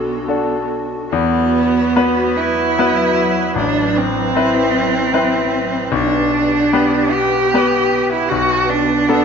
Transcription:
Already playing: grand piano B1 D4 F#4 A4, cello B3, analog synth pad D4 F#4 A4
0.28 grand piano D4 F#4 A4
1.10 grand piano E2, analog synth pad F#3 F#4 B4, cello B3
1.96 grand piano B3 F#4 B4
2.37 cello E4
2.79 grand piano B3 F#4 B4
3.56 grand piano A1, cello D4, analog synth pad E4
3.97 cello C4
4.35 grand piano C4 E4 B4
5.13 grand piano C4 E4 B4
5.92 grand piano B1, analog synth pad B3 G4 B4, cello D4
6.73 grand piano B3 G4 B4
7.12 cello G4
7.54 grand piano B3 G4 B4
8.12 cello E4
8.29 grand piano B1, cello F#4, analog synth pad F#4
8.69 cello D4
9.09 grand piano B3 F#4 A4

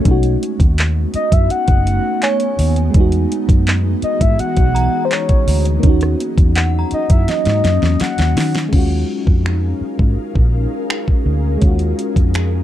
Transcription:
0.01 fm electric piano A3 C#4, ambient pad A3, closed hi-hat
0.05 fingered electric bass B1, ambient pad B3 D#4, fm electric piano D#4, kick
0.11 fm electric piano F#4
0.23 closed hi-hat
0.43 closed hi-hat
0.60 fingered electric bass D#2, kick, closed hi-hat
0.78 clap, closed hi-hat
1.14 soft synth lead D#5, muted fingered electric bass stroke, closed hi-hat
1.32 fingered electric bass F#2, soft synth lead E5, kick, closed hi-hat
1.50 soft synth lead F#5, muted fingered electric bass stroke, closed hi-hat
1.68 fingered electric bass F#1, kick, closed hi-hat
1.87 closed hi-hat
2.22 soft synth lead C#5, synth bell G#5, clap, closed hi-hat
2.40 closed hi-hat
2.59 fingered electric bass D#2, open hi-hat
2.76 closed hi-hat
2.90 fm electric piano G#3 B3, closed hi-hat
2.94 fingered electric bass E2, ambient pad E3 F#4 G#4, fm electric piano D#4, kick
3.00 fm electric piano F#4
3.12 closed hi-hat
3.32 closed hi-hat
3.49 fingered electric bass F#2, kick, closed hi-hat
3.67 clap, closed hi-hat
4.02 soft synth lead D#5, muted fingered electric bass stroke, closed hi-hat
4.21 fingered electric bass G#2, soft synth lead E5, kick, closed hi-hat
4.39 soft synth lead F#5, muted fingered electric bass stroke, closed hi-hat
4.57 fingered electric bass B1, kick, closed hi-hat
4.75 synth bell A#5, closed hi-hat
5.05 soft synth lead C5
5.11 soft synth lead C#5, clap, closed hi-hat
5.29 kick, closed hi-hat
5.47 fingered electric bass D2, open hi-hat
5.65 closed hi-hat
5.80 fingered electric bass D#2, ambient pad F#3, fm electric piano A#3 C#4, kick, closed hi-hat
5.84 ambient pad C#4, fm electric piano D#4
5.89 fm electric piano F#4
6.01 cross-stick, closed hi-hat
6.20 closed hi-hat
6.38 fingered electric bass E2, kick, closed hi-hat
6.55 synth bell F#5, clap, closed hi-hat
6.79 synth bell A#5
6.91 soft synth lead D#5, muted fingered electric bass stroke, closed hi-hat
7.10 fingered electric bass F#2, soft synth lead E5, kick, closed hi-hat
7.28 soft synth lead D#5, snare, closed hi-hat
7.45 fingered electric bass G#2, snare, closed hi-hat
7.64 fingered electric bass F#2, snare, closed hi-hat
7.82 fingered electric bass E2, snare
8.00 soft synth lead F#5, muted fingered electric bass stroke, snare, closed hi-hat
8.18 fingered electric bass D#2, snare, closed hi-hat
8.36 fingered electric bass D#3, snare, closed hi-hat, open hi-hat
8.55 snare, closed hi-hat
8.69 fm electric piano G#3 C#4, ambient pad D#4 G#4 F5, kick, crash
8.73 fingered electric bass D#2, ambient pad C#4 A#4, fm electric piano F4
8.78 fm electric piano F#4
9.27 fingered electric bass F2, kick
9.46 finger snap
9.81 muted fingered electric bass stroke
9.99 fingered electric bass G#2, kick
10.17 muted fingered electric bass stroke
10.35 fingered electric bass A#1, kick
10.90 finger snap
11.08 kick
11.26 fingered electric bass D2
11.57 fm electric piano G#3 C#4
11.62 fingered electric bass D#2, fm electric piano F4, kick, closed hi-hat
11.67 fm electric piano F#4
11.79 closed hi-hat
11.99 closed hi-hat
12.16 fingered electric bass F2, kick, closed hi-hat
12.34 finger snap, closed hi-hat

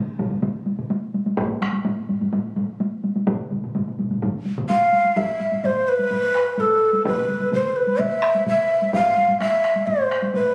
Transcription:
0.19 taiko, taiko mid, taiko high
0.30 taiko mid, taiko high
0.42 taiko mid, taiko high
0.66 taiko high
0.79 taiko mid
0.90 taiko high
1.14 taiko high
1.26 taiko high
1.37 taiko, taiko low-mid, taiko high
1.62 taiko rim, taiko high
1.73 taiko high
1.85 taiko low-mid, taiko high
2.09 taiko low-mid, taiko high
2.21 taiko low-mid, taiko high
2.33 taiko low-mid, taiko high
2.56 taiko low-mid, taiko high
2.80 taiko high
3.04 taiko high
3.16 taiko high
3.27 taiko, taiko low-mid, taiko mid, taiko high
3.39 taiko low-mid, taiko mid
3.51 taiko low-mid, taiko mid, taiko high
3.64 taiko low-mid, taiko mid
3.75 taiko low-mid, taiko mid, taiko high
3.88 taiko low-mid, taiko mid
3.99 taiko low-mid, taiko mid, taiko high
4.11 taiko low-mid, taiko mid, taiko high
4.22 taiko, taiko low-mid, taiko mid, taiko high
4.45 taiko high
4.58 taiko low-mid, taiko mid
4.69 shakuhachi F5, taiko low-mid, taiko mid, taiko high
4.92 taiko high
5.04 taiko high
5.16 shakuhachi E5, taiko, taiko low-mid, taiko high
5.29 taiko low-mid
5.40 taiko low-mid, taiko high
5.52 taiko low-mid, taiko high
5.64 shakuhachi C5, taiko low-mid, taiko high
5.89 shakuhachi B4
5.99 taiko high
6.11 taiko low-mid, taiko high
6.35 taiko rim
6.58 shakuhachi A4, taiko low-mid, taiko high
6.93 taiko high
7.05 shakuhachi B4, taiko, taiko mid, taiko high
7.18 taiko mid
7.28 taiko mid, taiko high
7.40 taiko mid, taiko high
7.52 shakuhachi C5, taiko mid, taiko high
7.76 shakuhachi B4
7.87 taiko high
7.99 shakuhachi E5, taiko mid, taiko high
8.23 taiko rim
8.35 taiko high
8.46 shakuhachi E5, taiko mid, taiko high
8.82 taiko high
8.93 shakuhachi F5, taiko, taiko low-mid, taiko high
9.06 taiko low-mid
9.17 taiko low-mid, taiko high
9.28 taiko low-mid, taiko high
9.40 shakuhachi E5, taiko rim, taiko high
9.64 taiko rim
9.76 taiko high
9.87 shakuhachi C5, taiko low-mid, taiko high
10.11 taiko rim
10.22 taiko high
10.34 shakuhachi B4, taiko low-mid, taiko high

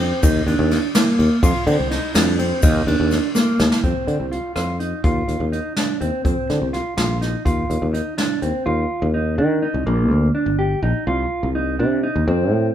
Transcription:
Already playing: fretless electric bass F2
0.00 clean electric guitar C4
0.23 fretless electric bass D#2, clean electric guitar D#4, kick, ride, shaker
0.47 fretless electric bass D#2, clean electric guitar D4, ride
0.59 fretless electric bass D#2
0.71 snare, ride
0.95 clean electric guitar A#3, snare, ride, shaker
1.19 fretless electric bass D#2, ride
1.43 fretless electric bass F2, clean electric guitar F4, kick, ride, shaker
1.67 fretless electric bass D3, clean electric guitar C4, ride
1.79 fretless electric bass C2
1.91 clean electric guitar D#4, snare, ride
2.15 fretless electric bass F2, clean electric guitar D4, snare, ride, shaker
2.39 clean electric guitar C4, ride
2.62 fretless electric bass D#2, clean electric guitar D#4, kick, ride, shaker
2.87 fretless electric bass D#2, clean electric guitar D4, ride
3.00 fretless electric bass D#2
3.11 snare, ride, shaker
3.35 clean electric guitar A#3, snare, shaker
3.60 fretless electric bass D#2, snare, shaker
3.72 snare
3.84 fretless electric bass F2, clean electric guitar C4, kick, closed hi-hat
4.07 fretless electric bass D3, closed hi-hat
4.20 fretless electric bass C2
4.32 clean electric guitar F4, closed hi-hat
4.56 fretless electric bass F2, clean electric guitar F4, cross-stick, closed hi-hat
4.80 clean electric guitar D#4, closed hi-hat
5.04 fretless electric bass D#2, clean electric guitar F4, kick, closed hi-hat
5.28 fretless electric bass D#2, closed hi-hat
5.40 fretless electric bass D#2
5.52 clean electric guitar D#4, closed hi-hat
5.76 clean electric guitar D4, snare, closed hi-hat
6.01 fretless electric bass D#2, clean electric guitar C4, closed hi-hat
6.25 fretless electric bass F2, clean electric guitar C4, kick, closed hi-hat
6.50 fretless electric bass D3, snare, closed hi-hat
6.62 fretless electric bass C2
6.73 clean electric guitar F4, snare, closed hi-hat
6.97 fretless electric bass A#1, clean electric guitar F4, snare, closed hi-hat
7.21 clean electric guitar D#4, snare, closed hi-hat
7.45 fretless electric bass D#2, clean electric guitar F4, kick, closed hi-hat
7.70 fretless electric bass D#2, closed hi-hat
7.82 fretless electric bass D#2
7.94 clean electric guitar D#4, closed hi-hat
8.18 clean electric guitar D4, snare, closed hi-hat
8.42 fretless electric bass D#2, clean electric guitar C4, closed hi-hat
8.66 fretless electric bass D#2, clean electric guitar F4
9.02 fretless electric bass D#2
9.14 clean electric guitar D#4
9.38 fretless electric bass D#3, clean electric guitar D4
9.62 clean electric guitar D#4
9.74 fretless electric bass C2
9.86 fretless electric bass A#1, clean electric guitar A#3
10.11 fretless electric bass D2
10.35 clean electric guitar D4
10.46 fretless electric bass G1
10.59 clean electric guitar G4
10.82 fretless electric bass A#1, clean electric guitar D#4
11.07 fretless electric bass C2, clean electric guitar F4
11.43 fretless electric bass C2
11.55 clean electric guitar D#4
11.79 fretless electric bass C3, clean electric guitar D4
12.03 clean electric guitar D#4
12.16 fretless electric bass D#2
12.28 fretless electric bass F2, clean electric guitar C4
12.51 fretless electric bass A2

